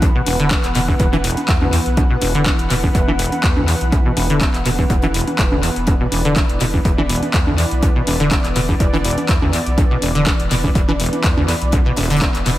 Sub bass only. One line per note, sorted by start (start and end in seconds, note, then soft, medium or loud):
0.00 0.20 B1 medium
0.26 0.57 E1 medium
0.64 0.93 E1 medium
1.00 1.30 E1 loud
1.48 1.78 E2 loud
1.86 2.15 B1 medium
2.22 2.52 E1 medium
2.59 2.88 E1 medium
2.95 3.25 E1 medium
3.44 3.74 E2 loud
3.81 4.10 B1 medium
4.17 4.47 E1 loud
4.54 4.83 E1 medium
4.90 5.20 E1 loud
5.39 5.69 E1 medium
5.76 6.05 E1 medium
6.12 6.42 E1 medium
6.49 6.79 E1 medium
6.85 7.15 E1 medium
7.34 7.64 E2 medium
7.71 8.01 B1 medium
8.07 8.37 E1 medium
8.45 8.74 E1 medium
8.80 9.10 E1 medium
9.29 9.59 E2 medium
9.66 9.96 B1 medium
10.02 10.32 E1 loud
10.40 10.69 E1 medium
10.75 11.05 E1 loud
11.24 11.54 E2 loud
11.62 11.91 B1 medium
11.97 12.27 E1 medium
12.35 12.58 E1 medium